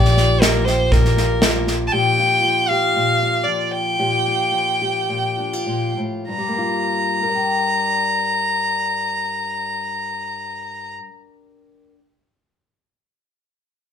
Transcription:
0, 0, Header, 1, 5, 480
1, 0, Start_track
1, 0, Key_signature, -2, "minor"
1, 0, Tempo, 502934
1, 1832, Time_signature, 4, 2, 24, 8
1, 2799, Tempo, 524476
1, 3759, Tempo, 554529
1, 4719, Tempo, 600000
1, 5679, Tempo, 627615
1, 11519, End_track
2, 0, Start_track
2, 0, Title_t, "Fiddle"
2, 0, Program_c, 0, 110
2, 0, Note_on_c, 0, 74, 82
2, 392, Note_on_c, 0, 70, 74
2, 406, Note_off_c, 0, 74, 0
2, 614, Note_on_c, 0, 72, 75
2, 628, Note_off_c, 0, 70, 0
2, 869, Note_on_c, 0, 70, 75
2, 883, Note_off_c, 0, 72, 0
2, 1590, Note_off_c, 0, 70, 0
2, 1785, Note_on_c, 0, 81, 68
2, 1833, Note_on_c, 0, 79, 94
2, 1847, Note_off_c, 0, 81, 0
2, 2558, Note_on_c, 0, 77, 87
2, 2572, Note_off_c, 0, 79, 0
2, 3258, Note_on_c, 0, 74, 71
2, 3271, Note_off_c, 0, 77, 0
2, 3512, Note_on_c, 0, 79, 80
2, 3525, Note_off_c, 0, 74, 0
2, 5429, Note_off_c, 0, 79, 0
2, 5670, Note_on_c, 0, 82, 63
2, 9231, Note_off_c, 0, 82, 0
2, 11519, End_track
3, 0, Start_track
3, 0, Title_t, "Steel-string acoustic guitar"
3, 0, Program_c, 1, 25
3, 0, Note_on_c, 1, 46, 62
3, 0, Note_on_c, 1, 53, 56
3, 0, Note_on_c, 1, 67, 64
3, 184, Note_on_c, 1, 65, 49
3, 405, Note_off_c, 1, 53, 0
3, 409, Note_on_c, 1, 53, 51
3, 644, Note_off_c, 1, 67, 0
3, 647, Note_on_c, 1, 67, 58
3, 884, Note_off_c, 1, 46, 0
3, 888, Note_on_c, 1, 46, 59
3, 1130, Note_off_c, 1, 65, 0
3, 1133, Note_on_c, 1, 65, 53
3, 1370, Note_off_c, 1, 53, 0
3, 1373, Note_on_c, 1, 53, 55
3, 1836, Note_off_c, 1, 46, 0
3, 1840, Note_off_c, 1, 67, 0
3, 1840, Note_on_c, 1, 46, 65
3, 1844, Note_on_c, 1, 67, 57
3, 1872, Note_off_c, 1, 65, 0
3, 2093, Note_on_c, 1, 65, 49
3, 2318, Note_off_c, 1, 53, 0
3, 2322, Note_on_c, 1, 53, 46
3, 2578, Note_off_c, 1, 67, 0
3, 2581, Note_on_c, 1, 67, 57
3, 2816, Note_off_c, 1, 46, 0
3, 2820, Note_on_c, 1, 46, 53
3, 3063, Note_off_c, 1, 65, 0
3, 3067, Note_on_c, 1, 65, 52
3, 3289, Note_off_c, 1, 53, 0
3, 3292, Note_on_c, 1, 53, 49
3, 3739, Note_off_c, 1, 46, 0
3, 3765, Note_on_c, 1, 46, 58
3, 3766, Note_off_c, 1, 67, 0
3, 3770, Note_on_c, 1, 67, 55
3, 3793, Note_off_c, 1, 65, 0
3, 4013, Note_on_c, 1, 65, 46
3, 4231, Note_off_c, 1, 53, 0
3, 4241, Note_on_c, 1, 53, 49
3, 4472, Note_off_c, 1, 67, 0
3, 4482, Note_on_c, 1, 67, 52
3, 4710, Note_off_c, 1, 46, 0
3, 4720, Note_on_c, 1, 46, 47
3, 4952, Note_off_c, 1, 65, 0
3, 4955, Note_on_c, 1, 62, 45
3, 5073, Note_off_c, 1, 62, 0
3, 5073, Note_on_c, 1, 65, 37
3, 5168, Note_off_c, 1, 46, 0
3, 5177, Note_on_c, 1, 46, 45
3, 5420, Note_off_c, 1, 46, 0
3, 5423, Note_on_c, 1, 45, 44
3, 5669, Note_off_c, 1, 45, 0
3, 5673, Note_on_c, 1, 43, 46
3, 5680, Note_off_c, 1, 65, 0
3, 5747, Note_off_c, 1, 53, 0
3, 5750, Note_on_c, 1, 55, 49
3, 5828, Note_on_c, 1, 58, 44
3, 5903, Note_on_c, 1, 65, 47
3, 6391, Note_off_c, 1, 58, 0
3, 6395, Note_on_c, 1, 70, 50
3, 6441, Note_off_c, 1, 65, 0
3, 6444, Note_on_c, 1, 74, 51
3, 6486, Note_off_c, 1, 67, 0
3, 6489, Note_on_c, 1, 79, 51
3, 9264, Note_off_c, 1, 43, 0
3, 9341, Note_off_c, 1, 55, 0
3, 9985, Note_off_c, 1, 70, 0
3, 10034, Note_off_c, 1, 74, 0
3, 10079, Note_off_c, 1, 79, 0
3, 11519, End_track
4, 0, Start_track
4, 0, Title_t, "Fingered electric bass"
4, 0, Program_c, 2, 33
4, 0, Note_on_c, 2, 34, 66
4, 1795, Note_off_c, 2, 34, 0
4, 11519, End_track
5, 0, Start_track
5, 0, Title_t, "Drums"
5, 45, Note_on_c, 9, 38, 30
5, 141, Note_off_c, 9, 38, 0
5, 163, Note_on_c, 9, 38, 30
5, 259, Note_off_c, 9, 38, 0
5, 400, Note_on_c, 9, 38, 88
5, 495, Note_off_c, 9, 38, 0
5, 640, Note_on_c, 9, 38, 30
5, 735, Note_off_c, 9, 38, 0
5, 877, Note_on_c, 9, 36, 72
5, 881, Note_on_c, 9, 38, 31
5, 972, Note_off_c, 9, 36, 0
5, 976, Note_off_c, 9, 38, 0
5, 1000, Note_on_c, 9, 38, 25
5, 1096, Note_off_c, 9, 38, 0
5, 1120, Note_on_c, 9, 38, 29
5, 1215, Note_off_c, 9, 38, 0
5, 1353, Note_on_c, 9, 38, 90
5, 1449, Note_off_c, 9, 38, 0
5, 1597, Note_on_c, 9, 38, 28
5, 1693, Note_off_c, 9, 38, 0
5, 11519, End_track
0, 0, End_of_file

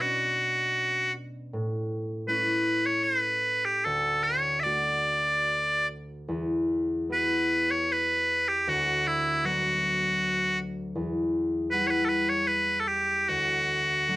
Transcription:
0, 0, Header, 1, 3, 480
1, 0, Start_track
1, 0, Tempo, 768246
1, 959, Time_signature, 3, 2, 24, 8
1, 1918, Tempo, 790514
1, 2878, Tempo, 810811
1, 4798, Tempo, 766284
1, 7678, Tempo, 795756
1, 8687, End_track
2, 0, Start_track
2, 0, Title_t, "Bagpipes"
2, 0, Program_c, 0, 109
2, 5, Note_on_c, 0, 66, 55
2, 701, Note_off_c, 0, 66, 0
2, 1427, Note_on_c, 0, 71, 65
2, 1785, Note_off_c, 0, 71, 0
2, 1785, Note_on_c, 0, 73, 62
2, 1896, Note_off_c, 0, 73, 0
2, 1896, Note_on_c, 0, 71, 62
2, 2271, Note_off_c, 0, 71, 0
2, 2271, Note_on_c, 0, 67, 61
2, 2390, Note_off_c, 0, 67, 0
2, 2390, Note_on_c, 0, 69, 67
2, 2624, Note_off_c, 0, 69, 0
2, 2624, Note_on_c, 0, 73, 68
2, 2846, Note_off_c, 0, 73, 0
2, 2846, Note_on_c, 0, 76, 64
2, 2866, Note_off_c, 0, 76, 0
2, 2866, Note_on_c, 0, 74, 64
2, 3599, Note_off_c, 0, 74, 0
2, 4343, Note_on_c, 0, 71, 67
2, 4687, Note_off_c, 0, 71, 0
2, 4687, Note_on_c, 0, 73, 68
2, 4814, Note_off_c, 0, 73, 0
2, 4814, Note_on_c, 0, 71, 68
2, 5168, Note_off_c, 0, 71, 0
2, 5168, Note_on_c, 0, 67, 61
2, 5296, Note_off_c, 0, 67, 0
2, 5296, Note_on_c, 0, 66, 68
2, 5535, Note_off_c, 0, 66, 0
2, 5535, Note_on_c, 0, 64, 58
2, 5774, Note_off_c, 0, 64, 0
2, 5774, Note_on_c, 0, 66, 63
2, 6483, Note_off_c, 0, 66, 0
2, 7189, Note_on_c, 0, 71, 78
2, 7288, Note_off_c, 0, 71, 0
2, 7288, Note_on_c, 0, 73, 51
2, 7308, Note_off_c, 0, 73, 0
2, 7308, Note_on_c, 0, 71, 71
2, 7401, Note_off_c, 0, 71, 0
2, 7401, Note_on_c, 0, 69, 55
2, 7425, Note_off_c, 0, 69, 0
2, 7425, Note_on_c, 0, 71, 67
2, 7551, Note_off_c, 0, 71, 0
2, 7551, Note_on_c, 0, 73, 72
2, 7665, Note_off_c, 0, 73, 0
2, 7665, Note_on_c, 0, 71, 71
2, 7863, Note_off_c, 0, 71, 0
2, 7863, Note_on_c, 0, 69, 44
2, 7910, Note_off_c, 0, 69, 0
2, 7910, Note_on_c, 0, 67, 62
2, 8157, Note_off_c, 0, 67, 0
2, 8157, Note_on_c, 0, 66, 61
2, 8687, Note_off_c, 0, 66, 0
2, 8687, End_track
3, 0, Start_track
3, 0, Title_t, "Harp"
3, 0, Program_c, 1, 46
3, 0, Note_on_c, 1, 47, 53
3, 0, Note_on_c, 1, 59, 39
3, 0, Note_on_c, 1, 64, 40
3, 2, Note_on_c, 1, 61, 35
3, 10, Note_on_c, 1, 62, 47
3, 166, Note_off_c, 1, 64, 0
3, 958, Note_on_c, 1, 45, 54
3, 990, Note_off_c, 1, 47, 0
3, 1422, Note_on_c, 1, 57, 42
3, 1423, Note_off_c, 1, 61, 0
3, 1425, Note_on_c, 1, 61, 38
3, 1431, Note_on_c, 1, 64, 46
3, 1463, Note_off_c, 1, 62, 0
3, 1934, Note_off_c, 1, 59, 0
3, 2396, Note_on_c, 1, 38, 48
3, 2429, Note_off_c, 1, 45, 0
3, 2432, Note_off_c, 1, 61, 0
3, 2876, Note_off_c, 1, 57, 0
3, 2878, Note_on_c, 1, 57, 38
3, 2883, Note_on_c, 1, 62, 33
3, 2884, Note_on_c, 1, 66, 40
3, 3027, Note_off_c, 1, 64, 0
3, 3845, Note_on_c, 1, 40, 52
3, 3878, Note_off_c, 1, 38, 0
3, 4324, Note_on_c, 1, 59, 36
3, 4326, Note_off_c, 1, 66, 0
3, 4327, Note_on_c, 1, 64, 33
3, 4330, Note_on_c, 1, 66, 42
3, 4540, Note_off_c, 1, 62, 0
3, 4852, Note_off_c, 1, 57, 0
3, 5286, Note_on_c, 1, 38, 52
3, 5320, Note_off_c, 1, 40, 0
3, 5766, Note_on_c, 1, 54, 40
3, 5771, Note_off_c, 1, 59, 0
3, 5772, Note_on_c, 1, 62, 44
3, 5773, Note_on_c, 1, 59, 36
3, 5829, Note_off_c, 1, 66, 0
3, 5936, Note_off_c, 1, 64, 0
3, 6715, Note_on_c, 1, 40, 60
3, 6750, Note_off_c, 1, 38, 0
3, 6750, Note_off_c, 1, 54, 0
3, 7197, Note_on_c, 1, 55, 40
3, 7199, Note_on_c, 1, 64, 38
3, 7203, Note_on_c, 1, 78, 47
3, 7525, Note_off_c, 1, 62, 0
3, 7717, Note_off_c, 1, 59, 0
3, 8158, Note_on_c, 1, 38, 53
3, 8188, Note_off_c, 1, 40, 0
3, 8188, Note_off_c, 1, 55, 0
3, 8191, Note_off_c, 1, 78, 0
3, 8636, Note_on_c, 1, 54, 41
3, 8642, Note_on_c, 1, 57, 32
3, 8644, Note_on_c, 1, 62, 42
3, 8687, Note_off_c, 1, 38, 0
3, 8687, Note_off_c, 1, 54, 0
3, 8687, Note_off_c, 1, 57, 0
3, 8687, Note_off_c, 1, 62, 0
3, 8687, Note_off_c, 1, 64, 0
3, 8687, End_track
0, 0, End_of_file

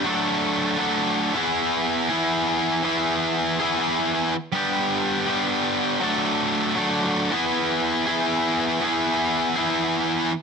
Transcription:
0, 0, Header, 1, 2, 480
1, 0, Start_track
1, 0, Tempo, 373367
1, 64, Time_signature, 4, 2, 24, 8
1, 13399, End_track
2, 0, Start_track
2, 0, Title_t, "Distorted electric guitar"
2, 0, Program_c, 0, 30
2, 55, Note_on_c, 0, 54, 103
2, 72, Note_on_c, 0, 57, 95
2, 86, Note_on_c, 0, 62, 112
2, 109, Note_on_c, 0, 69, 115
2, 990, Note_off_c, 0, 54, 0
2, 994, Note_off_c, 0, 57, 0
2, 1005, Note_on_c, 0, 54, 83
2, 1009, Note_on_c, 0, 57, 87
2, 1017, Note_off_c, 0, 62, 0
2, 1026, Note_off_c, 0, 69, 0
2, 1032, Note_on_c, 0, 62, 94
2, 1042, Note_on_c, 0, 69, 89
2, 1708, Note_off_c, 0, 54, 0
2, 1714, Note_on_c, 0, 52, 106
2, 1722, Note_off_c, 0, 57, 0
2, 1734, Note_off_c, 0, 62, 0
2, 1737, Note_on_c, 0, 59, 105
2, 1739, Note_off_c, 0, 69, 0
2, 1751, Note_on_c, 0, 64, 104
2, 1765, Note_on_c, 0, 68, 117
2, 2681, Note_off_c, 0, 68, 0
2, 2686, Note_on_c, 0, 68, 98
2, 2706, Note_off_c, 0, 64, 0
2, 2711, Note_on_c, 0, 64, 88
2, 2717, Note_off_c, 0, 59, 0
2, 2722, Note_on_c, 0, 59, 83
2, 2726, Note_off_c, 0, 52, 0
2, 2731, Note_on_c, 0, 52, 77
2, 3631, Note_off_c, 0, 52, 0
2, 3640, Note_off_c, 0, 68, 0
2, 3646, Note_on_c, 0, 52, 91
2, 3652, Note_off_c, 0, 59, 0
2, 3652, Note_off_c, 0, 64, 0
2, 3657, Note_on_c, 0, 59, 102
2, 3674, Note_on_c, 0, 64, 102
2, 3686, Note_on_c, 0, 68, 96
2, 4599, Note_off_c, 0, 52, 0
2, 4605, Note_off_c, 0, 68, 0
2, 4614, Note_off_c, 0, 64, 0
2, 4620, Note_on_c, 0, 68, 100
2, 4638, Note_on_c, 0, 64, 88
2, 4645, Note_off_c, 0, 59, 0
2, 4650, Note_on_c, 0, 59, 86
2, 4663, Note_on_c, 0, 52, 81
2, 5566, Note_off_c, 0, 68, 0
2, 5575, Note_off_c, 0, 64, 0
2, 5581, Note_off_c, 0, 59, 0
2, 5588, Note_off_c, 0, 52, 0
2, 5820, Note_on_c, 0, 55, 102
2, 5841, Note_on_c, 0, 59, 109
2, 5854, Note_on_c, 0, 62, 99
2, 5867, Note_on_c, 0, 67, 112
2, 6759, Note_off_c, 0, 55, 0
2, 6765, Note_off_c, 0, 59, 0
2, 6774, Note_on_c, 0, 55, 76
2, 6781, Note_on_c, 0, 59, 87
2, 6782, Note_off_c, 0, 62, 0
2, 6789, Note_off_c, 0, 67, 0
2, 6811, Note_on_c, 0, 62, 94
2, 6819, Note_on_c, 0, 67, 89
2, 7714, Note_off_c, 0, 55, 0
2, 7719, Note_on_c, 0, 54, 106
2, 7725, Note_off_c, 0, 59, 0
2, 7733, Note_off_c, 0, 62, 0
2, 7740, Note_on_c, 0, 57, 101
2, 7745, Note_off_c, 0, 67, 0
2, 7749, Note_on_c, 0, 62, 99
2, 7768, Note_on_c, 0, 69, 102
2, 8666, Note_off_c, 0, 54, 0
2, 8681, Note_on_c, 0, 54, 86
2, 8685, Note_off_c, 0, 57, 0
2, 8689, Note_off_c, 0, 62, 0
2, 8699, Note_off_c, 0, 69, 0
2, 8700, Note_on_c, 0, 57, 80
2, 8713, Note_on_c, 0, 62, 87
2, 8722, Note_on_c, 0, 69, 87
2, 9385, Note_off_c, 0, 54, 0
2, 9390, Note_on_c, 0, 52, 91
2, 9405, Note_off_c, 0, 57, 0
2, 9411, Note_off_c, 0, 62, 0
2, 9412, Note_on_c, 0, 59, 98
2, 9416, Note_off_c, 0, 69, 0
2, 9430, Note_on_c, 0, 64, 96
2, 9442, Note_on_c, 0, 68, 99
2, 10366, Note_off_c, 0, 68, 0
2, 10371, Note_on_c, 0, 68, 99
2, 10387, Note_off_c, 0, 64, 0
2, 10390, Note_off_c, 0, 59, 0
2, 10392, Note_on_c, 0, 64, 92
2, 10395, Note_on_c, 0, 59, 81
2, 10408, Note_off_c, 0, 52, 0
2, 10413, Note_on_c, 0, 52, 78
2, 11318, Note_off_c, 0, 52, 0
2, 11323, Note_on_c, 0, 52, 94
2, 11330, Note_off_c, 0, 59, 0
2, 11335, Note_on_c, 0, 59, 98
2, 11353, Note_off_c, 0, 64, 0
2, 11358, Note_on_c, 0, 64, 114
2, 11367, Note_off_c, 0, 68, 0
2, 11372, Note_on_c, 0, 68, 109
2, 12270, Note_off_c, 0, 68, 0
2, 12278, Note_off_c, 0, 52, 0
2, 12284, Note_off_c, 0, 59, 0
2, 12285, Note_on_c, 0, 68, 96
2, 12291, Note_off_c, 0, 64, 0
2, 12307, Note_on_c, 0, 64, 90
2, 12320, Note_on_c, 0, 59, 81
2, 12337, Note_on_c, 0, 52, 72
2, 13241, Note_off_c, 0, 68, 0
2, 13252, Note_off_c, 0, 64, 0
2, 13258, Note_off_c, 0, 59, 0
2, 13267, Note_off_c, 0, 52, 0
2, 13399, End_track
0, 0, End_of_file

